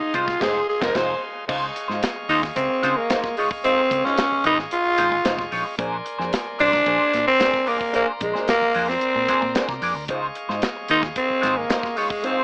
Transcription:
Already playing: D#4 G#4 D#5 F5 C6
0.00 muted clean electric guitar stroke, muted fingered electric bass stroke
0.14 C2 G#3 D#4 F4 C5, kick, closed hi-hat
0.27 muted clean electric guitar stroke, kick, snare
0.40 F1 G#3 D#4 F4 G#4 C5, kick, snare, crash
0.69 G#4
0.80 F1 G#3 D#4 F4 A#4 C5, kick, snare
0.94 F1 G#3 D#4 F4 C5, kick, snare, crash
1.48 C#2 G#3 D#4 F4 G#4 C5 D#5 F5 C#6, kick, crash
1.75 muted clean electric guitar stroke, closed hi-hat
1.88 G#2 G#3 D#4 F4 C5, snare
2.03 snare, closed hi-hat
2.16 muted clean electric guitar stroke
2.29 D#2 G#3 D#4 F4 C5, open hi-hat
2.43 muted clean electric guitar stroke, kick, snare
2.56 C#2 C4, kick, closed hi-hat
2.70 muted clean electric guitar stroke
2.83 C#3 G#3 D#4 F4 C5, snare, closed hi-hat
2.97 A#3, muted clean electric guitar stroke
3.10 G#3 D#4 F4 C5, snare, closed hi-hat
3.24 muted clean electric guitar stroke, kick, snare
3.37 G#3 D#4 F4 C#5, open hi-hat
3.51 muted clean electric guitar stroke, kick
3.64 G#3 C4 D#4 F4 C5, closed hi-hat
3.91 C#2, muted clean electric guitar stroke, kick, closed hi-hat
4.05 G#3 C#4 D#4 F4 C5, snare
4.18 snare, closed hi-hat
4.32 muted fingered electric bass stroke, muted clean electric guitar stroke
4.44 G#1 G#3 D#4 F4 C5, closed hi-hat
4.58 muted clean electric guitar stroke, snare
4.71 F4, closed hi-hat
4.85 muted clean electric guitar stroke
4.97 G#1 G#3 D#4 F4 C5, kick, snare, closed hi-hat
5.11 muted clean electric guitar stroke, kick
5.24 F1 G#3 D#4 F4 C5, snare, closed hi-hat
5.38 muted clean electric guitar stroke, kick, snare
5.51 A#1 G#3 D#4 F4 C#5, open hi-hat
5.65 muted clean electric guitar stroke
5.78 A#1 A#3 D4 G#4 A#4 C5 D5 G#5 C6, kick, closed hi-hat
6.05 muted clean electric guitar stroke, closed hi-hat
6.18 F2 A#3 D4 G#4 C5, snare
6.33 snare, closed hi-hat
6.46 muted clean electric guitar stroke
6.59 C2 A#3 D4 G#4 C5, open hi-hat
6.73 muted clean electric guitar stroke, kick, snare
6.86 A#1 A#3 D4 G#4 C5, kick, closed hi-hat
7.13 A#2, muted clean electric guitar stroke, snare, closed hi-hat
7.25 C4, muted clean electric guitar stroke
7.39 A#3 D4 G#4 C5, snare, closed hi-hat
7.52 muted clean electric guitar stroke, kick, snare
7.66 A#3 D4 G#4 D5, open hi-hat
7.79 muted clean electric guitar stroke, kick
7.93 A#3 D4 G#4 C5 A#5, closed hi-hat
8.20 A#1 G#3, muted clean electric guitar stroke, kick, closed hi-hat
8.34 A#3 D4 G#4 C5, snare
8.48 A#3, snare, closed hi-hat
8.61 muted clean electric guitar stroke, muted fingered electric bass stroke
8.74 F2 A#3 D4 G#4 C5, open hi-hat
8.88 C4, muted clean electric guitar stroke, snare
9.01 closed hi-hat
9.15 A#2, muted clean electric guitar stroke
9.28 A#3 D4 G#4 C5, kick, snare, closed hi-hat
9.42 A#2, muted clean electric guitar stroke, kick
9.55 A#3 D4 G#4 C5, snare, closed hi-hat
9.68 C3, muted clean electric guitar stroke, kick, snare
9.82 F2 A#3 D4 G#4 D5, open hi-hat
9.95 D2, muted clean electric guitar stroke
10.08 C#2 G#3 D#4 F4 G#4 C5 D#5 F5 C#6, kick, closed hi-hat
10.35 muted clean electric guitar stroke, closed hi-hat
10.49 G#2 G#3 D#4 F4 C5, snare
10.62 snare, closed hi-hat
10.77 muted clean electric guitar stroke
10.88 D#2 G#3 D#4 F4 C5, closed hi-hat
11.02 muted clean electric guitar stroke, kick, snare
11.16 C4, kick, closed hi-hat
11.29 muted clean electric guitar stroke, muted fingered electric bass stroke
11.41 G#1 G#3 D#4 F4 C5, snare, closed hi-hat
11.56 A#3, muted clean electric guitar stroke
11.69 G#3 D#4 F4 C5, snare, closed hi-hat
11.83 muted clean electric guitar stroke, kick, snare
11.96 G#3 D#4 F4 C#5, open hi-hat
12.10 muted clean electric guitar stroke, kick
12.23 G#3 C4 D#4 F4 C5, closed hi-hat

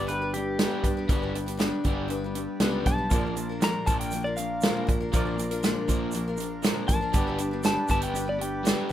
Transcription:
Already playing: G1 G3 G4 B4 D5
0.07 G3 B3 D4 B4, closed hi-hat
0.21 G3 B3 D4 B4
0.34 G3 D4 G4, closed hi-hat
0.59 G2 D3 G3 B3 D4 B4, snare, closed hi-hat
0.83 G2 G3 B3 D4 B4, kick, closed hi-hat
0.97 G3 B3 D4 B4
1.09 G1 G2 D3 G3 B3 D4 B4, kick, closed hi-hat
1.22 G3 B3 D4 B4
1.34 G3 D4, closed hi-hat
1.46 G3 B3 D4 B4, closed hi-hat
1.57 G2 D3 G3 B3 D4 B4, snare, closed hi-hat
1.84 G1 G3 B3 D4 B4, kick, closed hi-hat
2.08 G3 B3 D4 B4, closed hi-hat
2.24 G3 B3 D4 B4
2.35 G3 D4, closed hi-hat
2.60 C#2 G2 D3 G3 B3 D4 B4, snare, closed hi-hat
2.86 B1 G3 B3 D4 B4 A5, kick, snare, closed hi-hat
2.98 G3 B3 D4 B4
3.09 A#1 A#2 D3 F3 A#3 D4 F4 A#4, kick, closed hi-hat, shaker
3.14 D5
3.25 F3 A#3 D4 A#4
3.36 A#2 F3, closed hi-hat, shaker
3.49 F3 A#3 D4 A#4
3.62 A#2 D3 F3 A#3 D4 A#4 A#5, snare, closed hi-hat, shaker
3.86 A#1 A#2 F3 A#3 D4 A5, kick, closed hi-hat, shaker
3.91 A#4
4.00 G5, closed hi-hat
4.11 A#2 F3 A#3 D4, closed hi-hat, shaker
4.16 A#4
4.24 F3 A#3 D4 A#4 D5
4.37 A#2 F3 F5, closed hi-hat, shaker
4.61 A#2 D3 F3 A#3 D4 A#4, snare, closed hi-hat, shaker
4.87 A#2 F3 A#3 D4 A#4, kick, closed hi-hat
5.00 F3 A#3 D4 A#4
5.13 A#1 A#2 D3 F3 A#3 D4 F4 A#4 D5, kick, closed hi-hat, shaker
5.25 F3 A#3 D4 A#4
5.38 A#2 F3, closed hi-hat, shaker
5.51 F3 A#3 D4 A#4, closed hi-hat
5.63 A#2 D3 F3 A#3 D4 A#4, snare, closed hi-hat, shaker
5.88 A#1 A#2 F3 A#3 D4 A#4, kick, closed hi-hat, shaker
6.12 A#2 F3 A#3 D4, closed hi-hat, shaker
6.17 A#4
6.28 F3 A#3 D4 A#4
6.37 A#2 F3, closed hi-hat, shaker
6.63 A#2 D3 F3 A#3 D4 A#4, snare, closed hi-hat, shaker
6.88 A1 A#2 F3 A#3 D4 A5, kick, closed hi-hat, shaker
6.92 A#4
7.01 F3 A#3 D4 A#4
7.11 G1 G2 D3 G3 B3 D4 G4 B4 D5, kick, closed hi-hat, shaker
7.17 D5
7.27 G3 B3 D4 B4
7.38 G3 D4, closed hi-hat, shaker
7.51 G3 B3 D4 B4
7.63 G2 D3 G3 B3 D4 B4 A5, snare, closed hi-hat, shaker
7.88 G1 G3 B3 D4 B4 A5, kick, closed hi-hat, shaker
8.02 G5, closed hi-hat
8.15 G3 B3 D4 B4, closed hi-hat, shaker
8.26 G3 B3 D4 B4 D5
8.39 G3 D4 G5, closed hi-hat
8.65 G2 D3 G3 B3 D4 B4, snare, closed hi-hat, shaker
8.89 G3

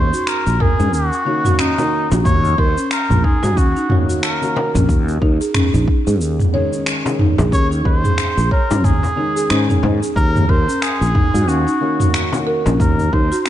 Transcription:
Already playing: D#2 C5
0.14 F#4, shaker
0.27 A#4, finger snap, shaker
0.47 A#1, shaker
0.60 G#4 A#4, kick, mid tom
0.80 G#2 C#4, shaker
0.94 D#2 F#4, shaker
1.13 shaker
1.25 D#3 A#3 C#4 D#4 F#4
1.45 F#4, mid tom, shaker
1.59 C#4 D#4, finger snap, shaker
1.78 D#3 A#3 C#4 D#4 F#4, frame drum, shaker
2.11 A#1 F#4, frame drum, shaker
2.25 D#2 C#5, kick, mid tom, shaker
2.45 shaker
2.58 D#2 A#4 C5, kick
2.77 C#4, shaker
2.91 A#4, finger snap, shaker
3.10 A#1, mid tom, shaker
3.24 D#4 G#4, kick
3.43 G#2 F#4, frame drum, shaker
3.57 D#2 C#4 F#4, kick, shaker
3.77 D#4, shaker
3.89 D#3 A#3 C#4 F#4, mid tom
4.09 F#4, shaker
4.22 A#4, finger snap, shaker
4.41 D#3 A#3 C#4 F#4, shaker
4.56 A#4, frame drum
4.75 A#1 C#4, mid tom, shaker
4.89 D#2, kick, shaker
5.09 shaker
5.22 D#2 D#4, kick
5.41 G#4, shaker
5.54 C#4, finger snap, mid tom, shaker
5.74 A#1 D#4, shaker
5.88 kick
6.07 G#2 G#4, shaker
6.21 D#2, shaker
6.40 mid tom, shaker
6.53 D#3 G#3 C#4 G#4 C#5
6.73 C#4, shaker
6.86 finger snap, shaker
7.05 D#3 G#3 C#4 G#4, frame drum, shaker
7.19 D#4, mid tom
7.38 A#1 G#4, frame drum, shaker
7.52 D#2 C#4 C#5, kick, shaker
7.71 D#4, shaker
7.85 D#2 C5, kick
8.04 G#4, mid tom, shaker
8.18 finger snap, shaker
8.37 A#1, shaker
8.51 A#4 C#5, kick
8.70 G#2 C#4, frame drum, shaker
8.84 D#2 G#4, kick, mid tom, shaker
9.03 frame drum, shaker
9.16 D#3 G#3 C#4 D#4 G#4
9.36 G#4, shaker
9.50 G#2 C#4, finger snap, shaker
9.68 D#3 G#3 C#4 D#4 G#4, mid tom, shaker
9.83 G#2, frame drum
10.02 G#4, shaker
10.16 D#2 A#4, kick, shaker
10.35 mid tom, shaker
10.49 D#2 A#4 C5, kick
10.68 C#4, shaker
10.82 G#4, finger snap, shaker
11.01 A#1, shaker
11.15 D#4, kick, mid tom
11.34 G#2 F#4, shaker
11.48 D#2 C#4 F#4, shaker
11.67 D#4, shaker
11.80 D#3 A#3 C#4 F#4
12.00 F#4, mid tom, shaker
12.14 finger snap, shaker
12.32 D#3 A#3 C#4 F#4, frame drum, shaker
12.47 A#4
12.66 A#1 C#4, frame drum, shaker
12.80 D#2 A#4, kick, mid tom, shaker
13.00 shaker
13.13 D#2 D#4 C5, kick
13.32 F#4, shaker
13.39 C5
13.46 C#4, finger snap

